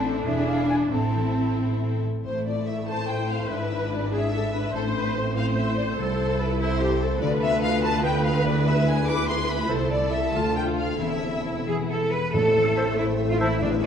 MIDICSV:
0, 0, Header, 1, 12, 480
1, 0, Start_track
1, 0, Key_signature, 0, "minor"
1, 0, Tempo, 438276
1, 1005, Time_signature, 6, 3, 24, 8
1, 2460, Tempo, 419874
1, 3420, Tempo, 413793
1, 11100, Tempo, 439239
1, 13980, Tempo, 426136
1, 15692, End_track
2, 0, Start_track
2, 0, Title_t, "Flute"
2, 0, Program_c, 0, 73
2, 295, Note_on_c, 0, 76, 65
2, 533, Note_on_c, 0, 77, 67
2, 550, Note_off_c, 0, 76, 0
2, 756, Note_off_c, 0, 77, 0
2, 762, Note_on_c, 0, 80, 63
2, 828, Note_off_c, 0, 80, 0
2, 1012, Note_on_c, 0, 81, 56
2, 1722, Note_off_c, 0, 81, 0
2, 14451, Note_on_c, 0, 81, 53
2, 14568, Note_off_c, 0, 81, 0
2, 15184, Note_on_c, 0, 81, 62
2, 15294, Note_off_c, 0, 81, 0
2, 15692, End_track
3, 0, Start_track
3, 0, Title_t, "Oboe"
3, 0, Program_c, 1, 68
3, 14457, Note_on_c, 1, 76, 56
3, 14542, Note_off_c, 1, 76, 0
3, 15178, Note_on_c, 1, 76, 65
3, 15262, Note_off_c, 1, 76, 0
3, 15692, End_track
4, 0, Start_track
4, 0, Title_t, "Violin section"
4, 0, Program_c, 2, 48
4, 0, Note_on_c, 2, 69, 56
4, 251, Note_off_c, 2, 69, 0
4, 289, Note_on_c, 2, 68, 55
4, 999, Note_on_c, 2, 69, 43
4, 1005, Note_off_c, 2, 68, 0
4, 2208, Note_off_c, 2, 69, 0
4, 2458, Note_on_c, 2, 72, 58
4, 2682, Note_off_c, 2, 72, 0
4, 2703, Note_on_c, 2, 74, 60
4, 2936, Note_off_c, 2, 74, 0
4, 2944, Note_on_c, 2, 76, 56
4, 3182, Note_off_c, 2, 76, 0
4, 3192, Note_on_c, 2, 81, 71
4, 3421, Note_off_c, 2, 81, 0
4, 3423, Note_on_c, 2, 79, 61
4, 3663, Note_off_c, 2, 79, 0
4, 3672, Note_on_c, 2, 77, 54
4, 3897, Note_on_c, 2, 76, 56
4, 3909, Note_off_c, 2, 77, 0
4, 4374, Note_off_c, 2, 76, 0
4, 4390, Note_on_c, 2, 74, 61
4, 4629, Note_off_c, 2, 74, 0
4, 4635, Note_on_c, 2, 76, 77
4, 5349, Note_on_c, 2, 69, 67
4, 5350, Note_off_c, 2, 76, 0
4, 5441, Note_off_c, 2, 69, 0
4, 5575, Note_on_c, 2, 71, 65
4, 5816, Note_off_c, 2, 71, 0
4, 5822, Note_on_c, 2, 72, 61
4, 6063, Note_on_c, 2, 77, 84
4, 6064, Note_off_c, 2, 72, 0
4, 6155, Note_off_c, 2, 77, 0
4, 6305, Note_on_c, 2, 76, 51
4, 6534, Note_on_c, 2, 74, 61
4, 6537, Note_off_c, 2, 76, 0
4, 6627, Note_off_c, 2, 74, 0
4, 6768, Note_on_c, 2, 72, 70
4, 7238, Note_off_c, 2, 72, 0
4, 7251, Note_on_c, 2, 71, 67
4, 7491, Note_off_c, 2, 71, 0
4, 7495, Note_on_c, 2, 72, 77
4, 8194, Note_off_c, 2, 72, 0
4, 8206, Note_on_c, 2, 74, 79
4, 8299, Note_off_c, 2, 74, 0
4, 8445, Note_on_c, 2, 76, 87
4, 8677, Note_off_c, 2, 76, 0
4, 8689, Note_on_c, 2, 77, 84
4, 8920, Note_off_c, 2, 77, 0
4, 8933, Note_on_c, 2, 81, 86
4, 9163, Note_off_c, 2, 81, 0
4, 9170, Note_on_c, 2, 79, 70
4, 9403, Note_off_c, 2, 79, 0
4, 9410, Note_on_c, 2, 77, 70
4, 9643, Note_off_c, 2, 77, 0
4, 9643, Note_on_c, 2, 74, 78
4, 9885, Note_off_c, 2, 74, 0
4, 9892, Note_on_c, 2, 76, 83
4, 10131, Note_off_c, 2, 76, 0
4, 10141, Note_on_c, 2, 80, 80
4, 10375, Note_on_c, 2, 86, 93
4, 10376, Note_off_c, 2, 80, 0
4, 10613, Note_off_c, 2, 86, 0
4, 10615, Note_on_c, 2, 84, 75
4, 10850, Note_off_c, 2, 84, 0
4, 10853, Note_on_c, 2, 83, 70
4, 11086, Note_on_c, 2, 72, 78
4, 11097, Note_off_c, 2, 83, 0
4, 11324, Note_off_c, 2, 72, 0
4, 11331, Note_on_c, 2, 74, 75
4, 11558, Note_off_c, 2, 74, 0
4, 11566, Note_on_c, 2, 76, 71
4, 11793, Note_on_c, 2, 81, 80
4, 11799, Note_off_c, 2, 76, 0
4, 12033, Note_off_c, 2, 81, 0
4, 12044, Note_on_c, 2, 79, 65
4, 12131, Note_off_c, 2, 79, 0
4, 12280, Note_on_c, 2, 77, 59
4, 12515, Note_off_c, 2, 77, 0
4, 12518, Note_on_c, 2, 76, 64
4, 13249, Note_off_c, 2, 76, 0
4, 13970, Note_on_c, 2, 76, 59
4, 15692, Note_off_c, 2, 76, 0
4, 15692, End_track
5, 0, Start_track
5, 0, Title_t, "Clarinet"
5, 0, Program_c, 3, 71
5, 14466, Note_on_c, 3, 72, 57
5, 14548, Note_off_c, 3, 72, 0
5, 15178, Note_on_c, 3, 72, 54
5, 15263, Note_off_c, 3, 72, 0
5, 15692, End_track
6, 0, Start_track
6, 0, Title_t, "Viola section"
6, 0, Program_c, 4, 48
6, 0, Note_on_c, 4, 60, 53
6, 244, Note_off_c, 4, 60, 0
6, 282, Note_on_c, 4, 62, 47
6, 999, Note_on_c, 4, 60, 48
6, 1001, Note_off_c, 4, 62, 0
6, 2233, Note_off_c, 4, 60, 0
6, 3184, Note_on_c, 4, 72, 55
6, 3860, Note_off_c, 4, 72, 0
6, 3898, Note_on_c, 4, 71, 57
6, 4622, Note_on_c, 4, 68, 50
6, 4624, Note_off_c, 4, 71, 0
6, 4859, Note_on_c, 4, 69, 48
6, 4860, Note_off_c, 4, 68, 0
6, 5098, Note_off_c, 4, 69, 0
6, 5102, Note_on_c, 4, 71, 57
6, 5337, Note_on_c, 4, 72, 67
6, 5339, Note_off_c, 4, 71, 0
6, 6047, Note_off_c, 4, 72, 0
6, 6064, Note_on_c, 4, 72, 66
6, 6762, Note_off_c, 4, 72, 0
6, 6772, Note_on_c, 4, 69, 71
6, 7490, Note_off_c, 4, 69, 0
6, 7493, Note_on_c, 4, 64, 64
6, 7727, Note_off_c, 4, 64, 0
6, 7733, Note_on_c, 4, 67, 58
6, 7971, Note_off_c, 4, 67, 0
6, 7976, Note_on_c, 4, 69, 51
6, 8203, Note_on_c, 4, 71, 76
6, 8210, Note_off_c, 4, 69, 0
6, 10325, Note_off_c, 4, 71, 0
6, 10370, Note_on_c, 4, 71, 63
6, 11082, Note_off_c, 4, 71, 0
6, 11088, Note_on_c, 4, 69, 62
6, 11784, Note_on_c, 4, 65, 53
6, 11793, Note_off_c, 4, 69, 0
6, 12511, Note_off_c, 4, 65, 0
6, 12514, Note_on_c, 4, 64, 50
6, 13592, Note_off_c, 4, 64, 0
6, 13980, Note_on_c, 4, 57, 56
6, 15376, Note_off_c, 4, 57, 0
6, 15416, Note_on_c, 4, 56, 66
6, 15692, Note_off_c, 4, 56, 0
6, 15692, End_track
7, 0, Start_track
7, 0, Title_t, "Violin section"
7, 0, Program_c, 5, 48
7, 0, Note_on_c, 5, 64, 48
7, 252, Note_off_c, 5, 64, 0
7, 295, Note_on_c, 5, 64, 53
7, 993, Note_off_c, 5, 64, 0
7, 1012, Note_on_c, 5, 64, 46
7, 2215, Note_off_c, 5, 64, 0
7, 2467, Note_on_c, 5, 57, 45
7, 2469, Note_on_c, 5, 64, 46
7, 3861, Note_off_c, 5, 57, 0
7, 3903, Note_on_c, 5, 62, 44
7, 5300, Note_off_c, 5, 62, 0
7, 5306, Note_off_c, 5, 64, 0
7, 5343, Note_on_c, 5, 64, 47
7, 5344, Note_on_c, 5, 60, 53
7, 6729, Note_off_c, 5, 64, 0
7, 6730, Note_off_c, 5, 60, 0
7, 6775, Note_on_c, 5, 64, 50
7, 6776, Note_on_c, 5, 69, 56
7, 8160, Note_off_c, 5, 64, 0
7, 8207, Note_on_c, 5, 65, 60
7, 9597, Note_off_c, 5, 69, 0
7, 9598, Note_off_c, 5, 65, 0
7, 9643, Note_on_c, 5, 68, 52
7, 9646, Note_on_c, 5, 64, 61
7, 11049, Note_off_c, 5, 68, 0
7, 11098, Note_on_c, 5, 69, 55
7, 11754, Note_off_c, 5, 64, 0
7, 11799, Note_on_c, 5, 65, 47
7, 12475, Note_off_c, 5, 65, 0
7, 12522, Note_on_c, 5, 60, 40
7, 13206, Note_off_c, 5, 69, 0
7, 13207, Note_off_c, 5, 60, 0
7, 13251, Note_on_c, 5, 68, 42
7, 13255, Note_on_c, 5, 59, 47
7, 13718, Note_off_c, 5, 68, 0
7, 13720, Note_off_c, 5, 59, 0
7, 13979, Note_on_c, 5, 72, 57
7, 15376, Note_off_c, 5, 72, 0
7, 15414, Note_on_c, 5, 71, 63
7, 15692, Note_off_c, 5, 71, 0
7, 15692, End_track
8, 0, Start_track
8, 0, Title_t, "Cello section"
8, 0, Program_c, 6, 48
8, 0, Note_on_c, 6, 62, 63
8, 975, Note_off_c, 6, 62, 0
8, 1008, Note_on_c, 6, 60, 43
8, 2078, Note_off_c, 6, 60, 0
8, 2463, Note_on_c, 6, 45, 45
8, 3859, Note_off_c, 6, 45, 0
8, 3903, Note_on_c, 6, 44, 46
8, 5346, Note_off_c, 6, 44, 0
8, 5346, Note_on_c, 6, 45, 57
8, 6748, Note_off_c, 6, 45, 0
8, 6782, Note_on_c, 6, 36, 58
8, 8181, Note_off_c, 6, 36, 0
8, 8207, Note_on_c, 6, 38, 67
8, 11050, Note_off_c, 6, 38, 0
8, 11102, Note_on_c, 6, 36, 58
8, 11786, Note_off_c, 6, 36, 0
8, 11790, Note_on_c, 6, 38, 51
8, 12514, Note_off_c, 6, 38, 0
8, 12517, Note_on_c, 6, 40, 46
8, 13234, Note_off_c, 6, 40, 0
8, 13244, Note_on_c, 6, 68, 72
8, 13332, Note_off_c, 6, 68, 0
8, 13489, Note_on_c, 6, 69, 66
8, 13730, Note_off_c, 6, 69, 0
8, 13730, Note_on_c, 6, 71, 72
8, 13970, Note_on_c, 6, 69, 80
8, 13973, Note_off_c, 6, 71, 0
8, 14684, Note_off_c, 6, 69, 0
8, 14696, Note_on_c, 6, 64, 61
8, 14786, Note_off_c, 6, 64, 0
8, 15063, Note_on_c, 6, 65, 73
8, 15180, Note_off_c, 6, 65, 0
8, 15180, Note_on_c, 6, 64, 70
8, 15415, Note_off_c, 6, 64, 0
8, 15418, Note_on_c, 6, 62, 79
8, 15508, Note_off_c, 6, 62, 0
8, 15654, Note_on_c, 6, 62, 82
8, 15692, Note_off_c, 6, 62, 0
8, 15692, End_track
9, 0, Start_track
9, 0, Title_t, "Harp"
9, 0, Program_c, 7, 46
9, 0, Note_on_c, 7, 45, 56
9, 0, Note_on_c, 7, 60, 43
9, 59, Note_on_c, 7, 64, 36
9, 70, Note_on_c, 7, 69, 43
9, 292, Note_on_c, 7, 40, 52
9, 310, Note_off_c, 7, 60, 0
9, 313, Note_off_c, 7, 45, 0
9, 313, Note_off_c, 7, 69, 0
9, 526, Note_on_c, 7, 62, 39
9, 754, Note_off_c, 7, 64, 0
9, 764, Note_on_c, 7, 64, 31
9, 775, Note_on_c, 7, 68, 35
9, 1008, Note_on_c, 7, 45, 49
9, 1025, Note_off_c, 7, 40, 0
9, 1025, Note_off_c, 7, 62, 0
9, 1028, Note_off_c, 7, 68, 0
9, 1253, Note_on_c, 7, 52, 33
9, 1479, Note_off_c, 7, 64, 0
9, 1492, Note_on_c, 7, 64, 32
9, 1988, Note_on_c, 7, 60, 27
9, 2216, Note_off_c, 7, 52, 0
9, 2229, Note_on_c, 7, 52, 26
9, 2454, Note_off_c, 7, 45, 0
9, 2467, Note_on_c, 7, 45, 45
9, 2482, Note_off_c, 7, 52, 0
9, 2697, Note_off_c, 7, 60, 0
9, 2711, Note_on_c, 7, 60, 40
9, 2934, Note_off_c, 7, 64, 0
9, 2948, Note_on_c, 7, 64, 37
9, 3188, Note_on_c, 7, 69, 39
9, 3409, Note_off_c, 7, 64, 0
9, 3423, Note_on_c, 7, 64, 34
9, 3654, Note_off_c, 7, 60, 0
9, 3668, Note_on_c, 7, 60, 30
9, 3905, Note_on_c, 7, 44, 46
9, 3926, Note_off_c, 7, 60, 0
9, 3927, Note_off_c, 7, 45, 0
9, 3927, Note_off_c, 7, 69, 0
9, 4153, Note_on_c, 7, 62, 41
9, 4379, Note_off_c, 7, 64, 0
9, 4393, Note_on_c, 7, 64, 34
9, 4630, Note_on_c, 7, 71, 38
9, 4861, Note_off_c, 7, 64, 0
9, 4875, Note_on_c, 7, 64, 37
9, 5096, Note_off_c, 7, 62, 0
9, 5110, Note_on_c, 7, 62, 38
9, 5351, Note_on_c, 7, 45, 52
9, 5366, Note_off_c, 7, 44, 0
9, 5367, Note_off_c, 7, 62, 0
9, 5367, Note_off_c, 7, 71, 0
9, 5591, Note_on_c, 7, 60, 43
9, 5814, Note_off_c, 7, 64, 0
9, 5828, Note_on_c, 7, 64, 43
9, 6065, Note_on_c, 7, 69, 45
9, 6289, Note_off_c, 7, 64, 0
9, 6302, Note_on_c, 7, 64, 42
9, 6527, Note_off_c, 7, 60, 0
9, 6541, Note_on_c, 7, 60, 39
9, 6778, Note_on_c, 7, 48, 60
9, 6798, Note_off_c, 7, 45, 0
9, 7001, Note_off_c, 7, 60, 0
9, 7015, Note_on_c, 7, 60, 43
9, 7235, Note_off_c, 7, 64, 0
9, 7249, Note_on_c, 7, 64, 44
9, 7480, Note_off_c, 7, 69, 0
9, 7494, Note_on_c, 7, 69, 53
9, 7723, Note_off_c, 7, 64, 0
9, 7737, Note_on_c, 7, 64, 45
9, 7956, Note_off_c, 7, 60, 0
9, 7970, Note_on_c, 7, 60, 40
9, 8206, Note_on_c, 7, 50, 60
9, 8226, Note_off_c, 7, 60, 0
9, 8227, Note_off_c, 7, 48, 0
9, 8229, Note_off_c, 7, 64, 0
9, 8441, Note_on_c, 7, 59, 50
9, 8679, Note_on_c, 7, 65, 50
9, 8900, Note_off_c, 7, 69, 0
9, 8914, Note_on_c, 7, 69, 48
9, 9137, Note_off_c, 7, 65, 0
9, 9151, Note_on_c, 7, 65, 45
9, 9384, Note_off_c, 7, 59, 0
9, 9398, Note_on_c, 7, 59, 36
9, 9626, Note_off_c, 7, 50, 0
9, 9640, Note_on_c, 7, 50, 57
9, 9658, Note_off_c, 7, 65, 0
9, 9661, Note_off_c, 7, 69, 0
9, 9872, Note_off_c, 7, 59, 0
9, 9885, Note_on_c, 7, 59, 47
9, 10130, Note_on_c, 7, 64, 44
9, 10371, Note_on_c, 7, 68, 47
9, 10599, Note_off_c, 7, 64, 0
9, 10613, Note_on_c, 7, 64, 45
9, 10838, Note_off_c, 7, 59, 0
9, 10852, Note_on_c, 7, 59, 37
9, 11098, Note_on_c, 7, 48, 51
9, 11113, Note_off_c, 7, 50, 0
9, 11115, Note_off_c, 7, 59, 0
9, 11116, Note_off_c, 7, 68, 0
9, 11332, Note_on_c, 7, 57, 42
9, 11550, Note_off_c, 7, 64, 0
9, 11563, Note_on_c, 7, 64, 40
9, 11568, Note_on_c, 7, 69, 42
9, 11799, Note_on_c, 7, 50, 51
9, 11817, Note_off_c, 7, 48, 0
9, 11817, Note_off_c, 7, 64, 0
9, 12024, Note_off_c, 7, 57, 0
9, 12037, Note_on_c, 7, 57, 35
9, 12267, Note_off_c, 7, 69, 0
9, 12275, Note_on_c, 7, 65, 32
9, 12282, Note_on_c, 7, 69, 36
9, 12518, Note_on_c, 7, 52, 48
9, 12538, Note_off_c, 7, 50, 0
9, 12539, Note_off_c, 7, 65, 0
9, 12763, Note_on_c, 7, 64, 39
9, 12994, Note_off_c, 7, 64, 0
9, 12996, Note_off_c, 7, 69, 0
9, 13006, Note_on_c, 7, 64, 35
9, 13011, Note_on_c, 7, 69, 35
9, 13242, Note_off_c, 7, 52, 0
9, 13255, Note_on_c, 7, 52, 45
9, 13269, Note_off_c, 7, 57, 0
9, 13271, Note_off_c, 7, 69, 0
9, 13482, Note_off_c, 7, 64, 0
9, 13742, Note_on_c, 7, 64, 30
9, 13747, Note_on_c, 7, 68, 30
9, 13983, Note_on_c, 7, 45, 55
9, 14000, Note_off_c, 7, 52, 0
9, 14001, Note_off_c, 7, 68, 0
9, 14221, Note_on_c, 7, 52, 44
9, 14448, Note_off_c, 7, 64, 0
9, 14461, Note_on_c, 7, 64, 43
9, 14704, Note_on_c, 7, 69, 45
9, 14947, Note_on_c, 7, 60, 41
9, 15174, Note_off_c, 7, 52, 0
9, 15187, Note_on_c, 7, 52, 39
9, 15408, Note_off_c, 7, 45, 0
9, 15421, Note_on_c, 7, 45, 61
9, 15440, Note_off_c, 7, 69, 0
9, 15441, Note_off_c, 7, 60, 0
9, 15442, Note_off_c, 7, 52, 0
9, 15692, Note_off_c, 7, 45, 0
9, 15692, Note_off_c, 7, 64, 0
9, 15692, End_track
10, 0, Start_track
10, 0, Title_t, "French horn section"
10, 0, Program_c, 8, 60
10, 13983, Note_on_c, 8, 60, 48
10, 13983, Note_on_c, 8, 64, 50
10, 15378, Note_off_c, 8, 60, 0
10, 15423, Note_on_c, 8, 59, 55
10, 15692, Note_off_c, 8, 59, 0
10, 15692, Note_off_c, 8, 64, 0
10, 15692, End_track
11, 0, Start_track
11, 0, Title_t, "Timpani"
11, 0, Program_c, 10, 47
11, 13980, Note_on_c, 10, 45, 69
11, 14658, Note_off_c, 10, 45, 0
11, 15420, Note_on_c, 10, 45, 69
11, 15692, Note_off_c, 10, 45, 0
11, 15692, End_track
12, 0, Start_track
12, 0, Title_t, "Double bass section"
12, 0, Program_c, 11, 48
12, 0, Note_on_c, 11, 33, 64
12, 252, Note_off_c, 11, 33, 0
12, 295, Note_on_c, 11, 28, 59
12, 993, Note_off_c, 11, 28, 0
12, 1010, Note_on_c, 11, 33, 50
12, 2214, Note_off_c, 11, 33, 0
12, 2467, Note_on_c, 11, 33, 51
12, 3861, Note_off_c, 11, 33, 0
12, 3901, Note_on_c, 11, 32, 53
12, 5343, Note_on_c, 11, 33, 55
12, 5345, Note_off_c, 11, 32, 0
12, 6747, Note_off_c, 11, 33, 0
12, 6782, Note_on_c, 11, 36, 60
12, 8181, Note_off_c, 11, 36, 0
12, 8212, Note_on_c, 11, 38, 73
12, 11053, Note_off_c, 11, 38, 0
12, 11100, Note_on_c, 11, 36, 63
12, 11785, Note_off_c, 11, 36, 0
12, 11794, Note_on_c, 11, 38, 57
12, 12512, Note_on_c, 11, 28, 49
12, 12516, Note_off_c, 11, 38, 0
12, 13724, Note_off_c, 11, 28, 0
12, 13978, Note_on_c, 11, 33, 65
12, 15692, Note_off_c, 11, 33, 0
12, 15692, End_track
0, 0, End_of_file